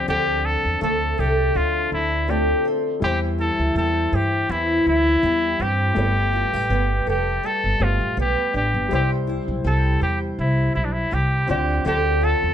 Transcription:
Already playing: grand piano F3 C4 D5
0.08 upright bass D2, twelve-string acoustic guitar D3 A4, trumpet G4
0.45 trumpet A4
0.65 upright bass E2
0.81 upright bass D2, twelve-string acoustic guitar A3, trumpet A4
1.18 upright bass C2, trumpet G4, twelve-string acoustic guitar A4
1.55 upright bass D2, twelve-string acoustic guitar D3, trumpet F4
1.92 upright bass D2, trumpet E4
2.27 twelve-string acoustic guitar A3, grand piano C4 F4 D5, trumpet G4
2.65 twelve-string acoustic guitar C4
3.00 upright bass E2, twelve-string acoustic guitar E3 C5, grand piano G3 E4 C5, trumpet G4
3.38 twelve-string acoustic guitar E4, trumpet A4
3.59 upright bass D2
3.75 upright bass E2, twelve-string acoustic guitar G3, trumpet A4
4.13 upright bass G2, trumpet G4, twelve-string acoustic guitar C5
4.49 upright bass E2, twelve-string acoustic guitar E3, trumpet E4
4.87 upright bass D2, trumpet E4
5.23 upright bass E2, twelve-string acoustic guitar G3
5.60 upright bass G2, twelve-string acoustic guitar C4, trumpet G4
5.94 upright bass G1, twelve-string acoustic guitar G3 A4, grand piano A3 G4
5.98 grand piano B4
6.33 twelve-string acoustic guitar F4
6.54 upright bass A1, twelve-string acoustic guitar G4
6.70 upright bass G1, twelve-string acoustic guitar B3
7.07 upright bass F1, trumpet G4, twelve-string acoustic guitar A4
7.43 twelve-string acoustic guitar G3, trumpet A4
7.64 upright bass G1
7.80 upright bass G1, grand piano A3 G4 B4, trumpet F4
8.01 upright bass A1
8.17 upright bass B1, twelve-string acoustic guitar B3, trumpet G4
8.54 upright bass A1, twelve-string acoustic guitar D4, trumpet G4
8.74 upright bass G1
8.89 upright bass C2, twelve-string acoustic guitar C3 C5, grand piano G3 E4
8.93 trumpet G4, grand piano C5
9.27 twelve-string acoustic guitar E4
9.48 upright bass B1
9.64 upright bass C2, twelve-string acoustic guitar G3, trumpet A4
10.01 upright bass E2, trumpet G4, twelve-string acoustic guitar C5
10.39 upright bass C2, trumpet E4
10.75 upright bass B1, trumpet E4
10.84 trumpet D4
10.92 trumpet E4
11.11 upright bass C2, twelve-string acoustic guitar G3, trumpet G4
11.47 upright bass D2, twelve-string acoustic guitar D3, grand piano C4 F4, trumpet G4
11.51 grand piano D5
11.85 upright bass D2, twelve-string acoustic guitar D3 A4, trumpet G4
12.21 twelve-string acoustic guitar F4, trumpet A4
12.43 upright bass E2

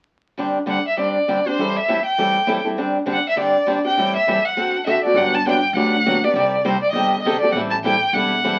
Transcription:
0.37 steel-string acoustic guitar D3 G3 C4 D4 G4
0.66 steel-string acoustic guitar D3 G3 C4 D4 G4, violin F#5
0.87 violin E5
0.97 steel-string acoustic guitar D3 G3 C4 D4 G4, violin D5
1.28 steel-string acoustic guitar D3 G3 C4 D4 G4
1.46 steel-string acoustic guitar C4 D4 G4, violin C5
1.58 steel-string acoustic guitar A2 E3 G3 C4 E4 A4
1.76 violin E5
1.88 steel-string acoustic guitar A2 E3 G3 C4 E4 A4
2.05 violin G5
2.18 steel-string acoustic guitar A2 E3 G3 C4 E4 A4
2.47 steel-string acoustic guitar A2 E3 G3 C4 E4 A4
2.65 steel-string acoustic guitar G3 C4 E4 A4
2.78 steel-string acoustic guitar D3 G3 C4 D4 G4
3.06 steel-string acoustic guitar D3 G3 C4 D4 G4
3.12 violin F#5
3.29 violin E5
3.36 steel-string acoustic guitar D3 G3 C4 D4 G4, violin D5
3.66 steel-string acoustic guitar D3 G3 C4 D4 G4
3.85 steel-string acoustic guitar C4 D4 G4, violin G5
3.97 steel-string acoustic guitar A2 E3 G3 C4 E4 A4
4.16 violin E5
4.27 steel-string acoustic guitar A2 E3 G3 C4 E4 A4
4.45 violin F#5
4.57 steel-string acoustic guitar D3 A3 C4 F#4 A4
4.86 steel-string acoustic guitar D3 A3 C4 F#4 A4, violin E5
5.04 steel-string acoustic guitar C4 F#4 A4, violin D5
5.14 upright bass G1, steel-string acoustic guitar D3 F#3 B3 D4 G4, violin F#5
5.34 violin A5
5.46 steel-string acoustic guitar D3 F#3 B3 D4 G4, violin G5
5.73 upright bass D2, steel-string acoustic guitar D3 F#3 B3 D4 G4, violin F#5
6.06 steel-string acoustic guitar D3 F#3 B3 D4 G4
6.24 steel-string acoustic guitar B3 D4 G4, violin D5
6.33 upright bass C2, steel-string acoustic guitar C3 D#3 G3 C4 G4 A4
6.65 steel-string acoustic guitar C3 D#3 G3 C4 G4 A4, violin C5
6.82 violin D5
6.91 upright bass G1, steel-string acoustic guitar C3 D#3 C4 G4, violin D#5
6.96 steel-string acoustic guitar G3 A4
7.22 steel-string acoustic guitar C3 D#3 G3 C4, violin D#5
7.26 steel-string acoustic guitar G4 A4
7.40 steel-string acoustic guitar G3 C4 G4 A4, violin D5
7.52 upright bass A1, steel-string acoustic guitar E3, violin F#5
7.56 steel-string acoustic guitar G3 C4 E4 A4
7.70 violin A5
7.84 steel-string acoustic guitar E3 G3 C4 E4 A4, violin G5
8.13 upright bass E1, steel-string acoustic guitar E3 G3 C4 E4 A4, violin F#5
8.44 steel-string acoustic guitar E3 G3 C4 E4 A4

